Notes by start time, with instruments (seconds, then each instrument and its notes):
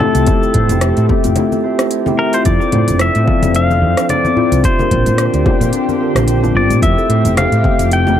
Already playing: analog synth pad A3 G4, harp E4 A4 C5 E5, tine electric piano G4 E5
0.00 tine electric piano A3 C4 E4 A4, harp G4, pedal steel guitar A4, low conga
0.15 fretless electric bass C2, harp F4, closed hi-hat, shaker
0.25 tine electric piano A3 C4 E5, harp E4, kick, closed hi-hat, high conga, shaker
0.30 tine electric piano G4
0.42 harp A4, shaker
0.54 fretless electric bass A2, harp C5, kick, closed hi-hat, low conga
0.69 fretless electric bass F1, harp E4, closed hi-hat, high conga, low conga, shaker
0.81 harp E4, cross-stick, closed hi-hat, shaker
0.97 fretless electric bass A2, harp E5, closed hi-hat, shaker
1.09 tine electric piano A3 C4 G4 E5, harp G4, kick, high conga
1.24 fretless electric bass F1, harp F4, closed hi-hat, low conga, shaker
1.36 harp E4, closed hi-hat, low conga, shaker
1.52 harp A4, high conga, shaker
1.64 tine electric piano A3 C4 A4 E5, harp C5
1.79 harp E4, cross-stick, closed hi-hat, shaker
1.91 harp E4, closed hi-hat, shaker
2.05 tine electric piano A3 C4 E4 G4, harp E5, high conga, low conga, shaker
2.18 harp G4, pedal steel guitar A#4
2.33 harp F4, pedal steel guitar C5, closed hi-hat, shaker
2.43 fretless electric bass F2, tine electric piano C4 E4 F4, analog synth pad C4, harp D4, pedal steel guitar D5, kick, closed hi-hat, high conga, shaker
2.48 tine electric piano A4
2.61 harp A4, shaker
2.72 fretless electric bass A2, harp C5, closed hi-hat, low conga
2.88 fretless electric bass F1, harp D4, closed hi-hat, high conga, shaker
2.99 harp D4, pedal steel guitar E5, cross-stick, closed hi-hat, shaker
3.15 fretless electric bass A2, harp D5, closed hi-hat, shaker
3.24 tine electric piano F3 C4 F5, harp F4, kick, high conga
3.29 tine electric piano A4
3.42 fretless electric bass F1, harp E4, closed hi-hat, low conga, shaker
3.55 harp D4, pedal steel guitar F5, closed hi-hat, shaker
3.70 harp A4, high conga, shaker
3.82 fretless electric bass F2, harp C5
3.97 harp D4, cross-stick, closed hi-hat, shaker
4.09 harp D4, pedal steel guitar D5, closed hi-hat, low conga, shaker
4.25 harp D5, high conga, shaker
4.35 tine electric piano C4 E4 F4 C5, harp F4, low conga
4.52 fretless electric bass C2, harp E4, closed hi-hat, shaker
4.61 analog synth pad D3 G4, tine electric piano C4 D4, harp D4, pedal steel guitar C5, kick, closed hi-hat, high conga, shaker
4.67 tine electric piano G4
4.79 harp A#4, low conga, shaker
4.91 fretless electric bass A#1, harp C5, kick, closed hi-hat, low conga
5.06 fretless electric bass A#2, harp D4, closed hi-hat, high conga, shaker
5.18 harp D4, cross-stick, closed hi-hat, shaker
5.34 fretless electric bass D2, harp D5, closed hi-hat, shaker
5.44 tine electric piano C4 D4 F4 G4, harp G4, kick, high conga, low conga
5.60 fretless electric bass A#2, harp F4, closed hi-hat, low conga, shaker
5.73 harp D4, closed hi-hat, shaker
5.88 harp A#4, high conga, shaker
5.99 tine electric piano C4 D4 F4 A#4, harp A#4
6.15 fretless electric bass A#1, harp C5, cross-stick, closed hi-hat, low conga, shaker
6.28 harp G4, closed hi-hat, shaker
6.42 tine electric piano C4 D4 F4 G4, harp G4, high conga, shaker
6.55 fretless electric bass G1, harp F4, pedal steel guitar D5
6.70 fretless electric bass A#2, harp C5, closed hi-hat, shaker
6.81 fretless electric bass F2, tine electric piano A3 C4 E4, analog synth pad A3 G4, harp E4, pedal steel guitar E5, kick, closed hi-hat, high conga, shaker
6.85 tine electric piano G4
6.98 harp A4, shaker
7.09 fretless electric bass A2, harp C5, closed hi-hat
7.25 fretless electric bass F1, harp E4, closed hi-hat, high conga, shaker
7.36 harp E4, pedal steel guitar F5, cross-stick, closed hi-hat, low conga, shaker
7.52 fretless electric bass A2, harp E5, closed hi-hat, shaker
7.62 tine electric piano A3 C4 E5, harp G4, kick, high conga
7.67 tine electric piano G4
7.79 fretless electric bass F1, harp F4, closed hi-hat, shaker
7.91 harp E4, pedal steel guitar G5, closed hi-hat, shaker
8.07 harp A4, high conga, low conga, shaker